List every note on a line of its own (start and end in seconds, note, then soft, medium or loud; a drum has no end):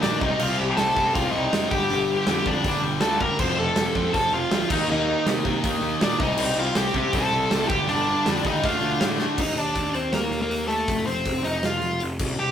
0.02 0.14 A#1 loud
0.02 0.21 D#3 medium
0.02 0.22 A#3 medium
0.02 0.20 D4 medium
0.02 0.22 D#4 loud
0.02 0.21 D5 medium
0.02 snare loud
0.02 open hi-hat medium
0.21 0.33 C2 loud
0.21 0.40 C3 loud
0.21 0.42 G3 loud
0.21 0.41 C4 loud
0.21 0.39 D#4 medium
0.21 0.40 D#5 medium
0.21 kick loud
0.39 0.52 C2 loud
0.39 0.77 C3 loud
0.39 0.79 G3 loud
0.39 0.78 C4 loud
0.39 0.57 F4 medium
0.39 0.59 F5 loud
0.39 crash loud
0.58 0.71 C2 loud
0.58 0.64 G4 medium
0.58 0.64 G5 medium
0.77 0.90 C2 medium
0.77 0.95 C3 medium
0.77 0.97 G3 loud
0.77 0.96 C4 loud
0.77 1.13 A4 medium
0.77 1.12 A5 loud
0.77 snare loud
0.77 open hi-hat medium
0.96 1.14 C3 medium
0.96 1.08 C3 loud
0.96 1.15 G3 loud
0.96 1.15 C4 loud
0.96 kick loud
1.14 1.27 C2 medium
1.14 1.52 C3 loud
1.14 1.53 G3 loud
1.14 1.53 C4 loud
1.14 1.31 F4 medium
1.14 1.32 F5 loud
1.14 kick loud
1.14 open hi-hat medium
1.31 1.46 C2 medium
1.31 1.67 D#4 medium
1.31 1.71 D#5 medium
1.53 1.64 F#1 medium
1.53 1.71 C3 medium
1.53 1.71 G3 loud
1.53 1.71 C4 loud
1.53 snare loud
1.53 open hi-hat medium
1.70 1.83 G1 medium
1.70 1.88 G2 loud
1.70 1.89 D3 loud
1.70 1.90 G3 loud
1.70 2.23 G4 medium
1.70 2.28 G5 medium
1.70 kick loud
1.90 2.13 G1 loud
1.90 2.25 G2 loud
1.90 2.26 D3 loud
1.90 2.26 G3 loud
1.90 open hi-hat medium
2.26 2.39 F2 medium
2.26 2.44 G2 medium
2.26 2.45 D3 medium
2.26 2.46 G3 loud
2.26 2.46 G4 medium
2.26 2.48 G5 medium
2.26 snare loud
2.26 open hi-hat medium
2.45 2.57 F2 medium
2.45 2.63 G2 medium
2.45 2.64 D3 medium
2.45 2.65 G3 loud
2.45 2.82 D4 medium
2.45 2.81 D5 loud
2.45 kick loud
2.64 2.76 G1 loud
2.64 3.02 G2 medium
2.64 3.03 D3 loud
2.64 3.03 G3 medium
2.64 kick loud
2.64 open hi-hat medium
2.84 2.95 G1 medium
3.01 3.25 D2 medium
3.01 3.20 G2 medium
3.01 3.21 D3 medium
3.01 3.22 G3 medium
3.01 3.19 A4 medium
3.01 3.21 A5 medium
3.01 snare loud
3.01 open hi-hat medium
3.20 3.39 G2 medium
3.20 3.39 D3 loud
3.20 3.40 G3 medium
3.20 3.38 A#4 medium
3.20 3.40 A#5 loud
3.20 kick loud
3.39 3.51 F1 loud
3.39 3.75 F2 loud
3.39 3.76 C3 loud
3.39 3.77 F3 loud
3.39 3.57 C5 loud
3.39 3.58 C6 loud
3.39 kick loud
3.39 crash loud
3.58 3.70 F1 loud
3.58 4.11 A4 medium
3.58 4.14 A5 loud
3.76 3.88 F1 medium
3.76 3.94 F2 medium
3.76 3.95 C3 medium
3.76 3.95 F3 medium
3.76 snare loud
3.76 open hi-hat medium
3.95 4.12 F2 medium
3.95 4.07 F2 loud
3.95 4.12 C3 medium
3.95 4.13 F3 loud
3.95 kick loud
4.14 4.26 F1 medium
4.14 4.50 F2 medium
4.14 4.51 C3 loud
4.14 4.52 F3 loud
4.14 4.32 A4 medium
4.14 4.32 A5 loud
4.14 kick loud
4.14 open hi-hat medium
4.32 4.44 F1 medium
4.32 4.68 F4 medium
4.32 4.72 F5 medium
4.51 4.62 D2 medium
4.51 4.69 F2 medium
4.51 4.69 C3 medium
4.51 4.70 F3 loud
4.51 snare loud
4.51 open hi-hat medium
4.70 4.82 D#2 loud
4.70 4.88 D#3 loud
4.70 4.88 A#3 loud
4.70 4.88 D#4 medium
4.70 4.90 D#4 loud
4.70 4.89 D#5 medium
4.70 kick loud
4.70 crash loud
4.89 5.12 D#2 loud
4.89 5.24 D#3 loud
4.89 5.25 A#3 loud
4.89 5.26 D#4 loud
4.89 5.25 D#4 medium
4.93 5.26 D#5 loud
5.25 5.38 C3 loud
5.25 5.43 D#3 medium
5.25 5.44 A#3 medium
5.25 5.45 D#4 loud
5.25 snare loud
5.25 open hi-hat medium
5.45 5.57 C3 medium
5.45 5.62 D#3 medium
5.45 5.63 A#3 medium
5.45 5.64 D#4 medium
5.45 kick medium
5.63 5.76 D#2 medium
5.63 5.99 D#3 medium
5.63 6.00 A#3 loud
5.63 6.01 D#4 loud
5.63 kick loud
5.63 open hi-hat medium
5.82 5.94 D#2 medium
6.01 6.13 A#2 loud
6.01 6.18 D#3 medium
6.01 6.19 A#3 loud
6.01 6.20 D4 medium
6.01 6.19 D#4 loud
6.01 6.20 D5 loud
6.01 snare loud
6.01 open hi-hat medium
6.20 6.31 C2 loud
6.20 6.37 C3 loud
6.20 6.37 G3 loud
6.20 6.38 C4 loud
6.20 6.56 D#4 medium
6.20 6.55 D#5 loud
6.20 kick loud
6.38 6.50 C2 loud
6.38 6.75 C3 loud
6.38 6.76 G3 loud
6.38 6.77 C4 loud
6.38 crash loud
6.57 6.68 C2 loud
6.57 6.76 F4 medium
6.57 6.77 F5 loud
6.75 6.87 C2 loud
6.75 6.94 C3 medium
6.75 6.95 G3 loud
6.75 6.95 C4 loud
6.75 7.12 G4 medium
6.75 7.15 G5 loud
6.75 snare loud
6.75 open hi-hat medium
6.94 7.06 C3 loud
6.94 7.13 C3 medium
6.94 7.14 G3 medium
6.94 7.14 C4 loud
6.94 kick loud
7.13 7.25 C2 medium
7.13 7.49 C3 medium
7.13 7.50 G3 loud
7.13 7.51 C4 loud
7.13 7.67 A4 loud
7.13 7.67 A5 loud
7.13 kick loud
7.13 open hi-hat medium
7.33 7.44 C2 loud
7.51 7.63 C2 loud
7.51 7.68 C3 medium
7.51 7.69 G3 medium
7.51 7.69 C4 loud
7.51 snare loud
7.51 open hi-hat medium
7.68 7.81 G1 loud
7.68 7.87 G2 loud
7.68 7.88 D3 loud
7.68 7.88 G3 loud
7.68 7.86 G4 medium
7.68 7.88 G5 medium
7.68 kick loud
7.88 8.11 G1 loud
7.88 8.25 G2 loud
7.88 8.26 D3 loud
7.88 8.26 G3 loud
7.88 8.41 D4 medium
7.88 8.46 D5 loud
7.88 open hi-hat medium
8.26 8.37 F2 loud
8.26 8.43 G2 medium
8.26 8.45 D3 medium
8.26 8.45 G3 loud
8.26 snare loud
8.26 open hi-hat medium
8.44 8.56 D#2 medium
8.44 8.62 G2 medium
8.44 8.62 D3 loud
8.44 8.63 G3 medium
8.44 8.63 D#4 medium
8.44 8.65 D#5 medium
8.44 kick medium
8.63 8.75 D2 loud
8.63 8.99 D3 medium
8.63 9.00 A3 medium
8.63 9.01 D4 loud
8.63 8.99 F4 medium
8.63 9.02 F5 medium
8.63 kick loud
8.63 open hi-hat medium
8.82 8.94 D2 medium
9.00 9.24 A2 medium
9.00 9.18 D3 medium
9.00 9.19 A3 loud
9.00 9.19 D4 medium
9.00 snare loud
9.00 open hi-hat medium
9.19 9.37 D3 medium
9.19 9.37 A3 medium
9.19 9.38 D4 loud
9.19 snare medium
9.38 9.54 D#2 medium
9.38 9.56 D#4 medium
9.38 9.58 D#5 loud
9.38 kick loud
9.38 crash loud
9.57 9.73 D#2 medium
9.57 9.92 D4 medium
9.57 9.95 D5 medium
9.57 open hi-hat medium
9.75 10.08 D#2 medium
9.75 kick medium
9.75 open hi-hat medium
9.95 10.12 C4 medium
9.95 10.14 C5 medium
9.95 open hi-hat medium
10.12 10.28 D#2 medium
10.12 10.40 A#3 medium
10.12 10.41 A#4 medium
10.12 snare loud
10.12 open hi-hat medium
10.31 10.48 D#2 medium
10.31 open hi-hat medium
10.42 10.68 A#3 medium
10.42 10.67 A#4 medium
10.50 10.83 D#2 medium
10.50 open hi-hat medium
10.68 11.04 A3 medium
10.68 11.04 A4 medium
10.68 open hi-hat medium
10.88 11.04 F1 medium
10.88 kick loud
10.88 open hi-hat medium
11.06 11.23 F1 medium
11.06 11.42 C4 medium
11.06 11.42 C5 medium
11.06 open hi-hat medium
11.25 11.42 F1 medium
11.25 kick medium
11.25 open hi-hat medium
11.44 11.61 F1 medium
11.44 11.62 D#4 medium
11.44 11.64 D#5 medium
11.44 open hi-hat medium
11.63 11.80 F1 medium
11.63 12.00 F4 medium
11.63 12.00 F5 loud
11.63 snare medium
11.63 open hi-hat medium
11.82 11.98 F1 medium
11.82 open hi-hat medium
12.00 12.18 F1 medium
12.00 open hi-hat medium
12.19 12.36 C2 medium
12.19 kick loud
12.19 crash loud
12.39 12.52 C2 loud
12.39 12.52 G4 medium
12.39 12.52 G5 medium